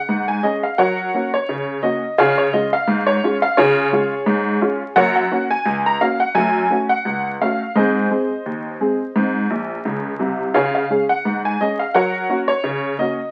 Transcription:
0.00 0.26 F#5 medium
0.09 0.38 G#2 medium
0.28 0.44 G#5 medium
0.43 0.63 G#3 soft
0.43 0.63 C#4 soft
0.43 0.63 G#4 medium
0.43 0.63 D#5 medium
0.63 0.79 F5 medium
0.78 1.08 F#3 medium
0.78 1.30 A#4 medium
0.78 1.29 C#5 medium
0.78 1.30 F#5 medium
1.14 1.33 A#3 soft
1.14 1.34 C#4 soft
1.14 1.34 F#4 soft
1.34 1.81 C#5 medium
1.49 1.78 C#3 medium
1.83 2.02 A#3 soft
1.83 2.02 C#4 soft
1.83 2.03 F#4 soft
1.83 2.16 D#5 medium
2.18 2.48 C#3 medium
2.18 2.39 F4 medium
2.18 2.37 G#4 medium
2.18 2.36 C#5 medium
2.18 2.38 F5 loud
2.38 2.53 C#5 medium
2.53 2.72 G#3 soft
2.53 2.72 C#4 soft
2.53 2.73 F4 medium
2.53 2.72 D#5 medium
2.73 3.00 F5 medium
2.88 3.17 G#2 medium
3.07 3.35 C#5 medium
3.24 3.42 G#3 medium
3.24 3.43 C#4 medium
3.24 3.43 F4 medium
3.42 3.57 F5 loud
3.57 3.87 C#3 loud
3.57 3.92 F4 medium
3.57 4.93 G#4 medium
3.57 4.92 C#5 medium
3.92 4.11 G#3 medium
3.92 4.12 C#4 soft
3.92 4.12 F4 medium
4.26 4.56 G#2 medium
4.61 4.80 G#3 medium
4.61 4.81 C#4 medium
4.61 4.81 F4 medium
4.96 5.26 F#2 medium
4.96 5.17 A#3 medium
4.96 5.15 A#4 medium
4.96 5.15 C#5 medium
4.96 5.14 F#5 loud
5.16 5.43 F#5 medium
5.31 5.50 A#3 medium
5.31 5.51 C#4 medium
5.31 5.51 F#4 medium
5.51 5.78 G#5 loud
5.66 5.95 C#2 medium
5.86 6.01 A#5 loud
6.01 6.20 A#3 soft
6.01 6.20 C#4 soft
6.01 6.21 F#4 medium
6.01 6.20 F5 medium
6.20 6.35 F#5 medium
6.35 6.65 F#2 medium
6.35 6.56 A3 medium
6.35 6.78 G#5 loud
6.70 6.89 A3 soft
6.70 6.90 C#4 medium
6.70 6.90 F#4 medium
6.89 7.30 F#5 medium
7.05 7.35 C#2 medium
7.41 7.60 A3 soft
7.41 7.60 C#4 soft
7.41 7.61 F#4 soft
7.41 7.74 F5 medium
7.76 8.05 G#2 medium
7.76 7.96 C4 medium
7.76 8.10 G#4 medium
7.76 9.81 C5 medium
7.76 9.43 D#5 medium
8.10 8.29 G#3 soft
8.10 8.30 C4 soft
8.10 8.30 G#4 soft
8.46 8.75 D#2 medium
8.81 9.00 G#3 soft
8.81 9.00 C4 soft
8.81 9.00 G#4 soft
9.16 9.45 G#2 medium
9.16 9.36 C4 soft
9.50 9.76 A#1 medium
9.50 9.76 A#2 medium
9.85 10.11 C#2 medium
9.85 10.11 C#3 medium
10.19 10.46 C2 medium
10.19 10.46 C3 medium
10.54 10.84 C#3 medium
10.54 10.75 F4 soft
10.54 10.73 G#4 medium
10.54 10.73 C#5 medium
10.54 10.73 F5 medium
10.75 11.02 F5 medium
10.90 11.09 G#3 soft
10.90 11.09 C#4 soft
10.90 11.10 G#4 medium
11.09 11.37 F#5 medium
11.25 11.55 G#2 medium
11.45 11.60 G#5 medium
11.61 11.80 G#3 soft
11.61 11.80 C#4 soft
11.61 11.80 G#4 soft
11.61 11.79 D#5 medium
11.79 11.94 F5 medium
11.94 12.24 F#3 medium
11.94 12.45 A#4 medium
11.94 12.45 C#5 medium
11.94 12.38 F#5 medium
12.29 12.48 A#3 soft
12.29 12.49 C#4 soft
12.29 12.49 F#4 medium
12.48 12.96 C#5 medium
12.64 12.93 C#3 medium
12.99 13.18 A#3 soft
12.99 13.19 C#4 soft
12.99 13.19 F#4 medium
12.99 13.27 D#5 medium

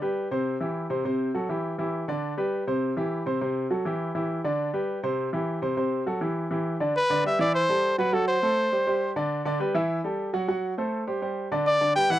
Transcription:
0.02 0.26 G3 medium
0.02 0.26 G4 medium
0.02 0.26 B4 medium
0.31 0.55 C3 medium
0.31 0.56 C4 medium
0.31 0.56 C5 medium
0.60 0.85 E3 medium
0.60 0.85 E4 medium
0.60 0.85 G4 medium
0.90 1.02 C3 medium
0.90 1.02 C4 medium
0.90 1.02 C5 medium
1.05 1.29 C3 medium
1.05 1.29 C4 medium
1.05 1.30 C5 medium
1.34 1.47 F#3 medium
1.34 1.47 F#4 medium
1.34 1.47 A4 medium
1.49 1.73 E3 medium
1.49 1.73 E4 medium
1.49 1.74 G4 medium
1.78 2.03 E3 medium
1.78 2.03 E4 medium
1.78 2.03 G4 medium
2.08 2.32 D3 medium
2.08 2.32 D4 medium
2.08 2.33 D5 medium
2.37 2.62 G3 medium
2.37 2.62 G4 medium
2.37 2.62 B4 medium
2.67 2.91 C3 medium
2.67 2.92 C4 medium
2.67 2.92 C5 medium
2.97 3.21 E3 medium
2.97 3.21 E4 medium
2.97 3.21 G4 medium
3.26 3.38 C3 medium
3.26 3.38 C4 medium
3.26 3.39 C5 medium
3.41 3.65 C3 medium
3.41 3.65 C4 medium
3.41 3.66 C5 medium
3.70 3.83 F#3 medium
3.70 3.83 F#4 medium
3.70 3.83 A4 medium
3.85 4.09 E3 medium
3.85 4.10 E4 medium
3.85 4.10 G4 medium
4.15 4.39 E3 medium
4.15 4.39 E4 medium
4.15 4.39 G4 medium
4.44 4.68 D3 medium
4.44 4.69 D4 medium
4.44 4.69 D5 medium
4.73 4.98 G3 medium
4.73 4.98 G4 medium
4.73 4.98 B4 medium
5.03 5.27 C3 medium
5.03 5.27 C4 medium
5.03 5.28 C5 medium
5.33 5.57 E3 medium
5.33 5.57 E4 medium
5.33 5.57 G4 medium
5.62 5.74 C3 medium
5.62 5.74 C4 medium
5.62 5.75 C5 medium
5.77 6.01 C3 medium
5.77 6.01 C4 medium
5.77 6.01 C5 medium
6.06 6.18 F#3 medium
6.06 6.19 F#4 medium
6.06 6.19 A4 medium
6.21 6.45 E3 medium
6.21 6.45 E4 medium
6.21 6.46 G4 medium
6.51 6.75 E3 medium
6.51 6.75 E4 medium
6.51 6.75 G4 medium
6.80 6.92 D3 medium
6.80 6.92 D4 medium
6.80 6.93 D5 medium
6.97 7.23 B4 loud
7.10 7.22 D3 medium
7.10 7.22 D4 medium
7.10 7.22 D5 loud
7.24 7.36 G3 medium
7.24 7.37 G4 medium
7.24 7.37 B4 medium
7.24 7.39 E5 loud
7.39 7.63 E3 loud
7.39 7.63 E4 loud
7.39 7.54 D5 loud
7.39 7.64 E5 medium
7.55 7.96 C5 loud
7.69 7.93 G3 medium
7.69 7.93 G4 medium
7.69 7.93 A4 medium
7.98 8.10 F#3 medium
7.98 8.10 F#4 medium
7.98 8.15 B4 medium
7.98 8.11 F#5 medium
8.13 8.37 F#3 medium
8.13 8.37 F#4 medium
8.13 8.28 A4 loud
8.13 8.37 F#5 medium
8.28 9.12 C5 loud
8.42 8.66 A3 medium
8.42 8.67 A4 medium
8.42 8.67 C5 medium
8.72 8.84 G3 medium
8.72 8.84 G4 medium
8.72 8.84 C5 medium
8.87 9.11 G3 medium
8.87 9.11 G4 medium
8.87 9.11 C5 medium
9.16 9.40 D3 medium
9.16 9.40 D4 medium
9.16 9.40 D5 medium
9.45 9.57 D3 loud
9.45 9.58 D4 medium
9.45 9.58 D5 loud
9.60 9.72 G3 medium
9.60 9.72 G4 medium
9.60 9.72 B4 medium
9.74 9.99 E3 loud
9.74 9.99 E4 loud
9.74 9.99 E5 medium
10.04 10.28 G3 medium
10.04 10.28 G4 medium
10.04 10.29 A4 medium
10.33 10.46 F#3 medium
10.33 10.46 F#4 medium
10.33 10.46 F#5 medium
10.48 10.72 F#3 medium
10.48 10.73 F#4 medium
10.48 10.73 F#5 medium
10.78 11.02 A3 medium
10.78 11.02 A4 medium
10.78 11.02 C5 medium
11.07 11.19 G3 medium
11.07 11.19 G4 medium
11.07 11.20 C5 medium
11.22 11.46 G3 medium
11.22 11.46 G4 medium
11.22 11.46 C5 medium
11.52 11.76 D3 medium
11.52 11.76 D4 medium
11.52 11.76 D5 medium
11.67 11.94 D5 loud
11.81 11.93 D3 medium
11.81 11.93 D4 medium
11.81 11.93 D5 medium
11.96 12.08 G3 medium
11.96 12.08 G4 medium
11.96 12.08 B4 medium
11.96 12.12 G5 loud
12.10 12.19 E3 medium
12.10 12.19 E4 medium
12.10 12.19 E5 medium
12.10 12.19 F#5 loud

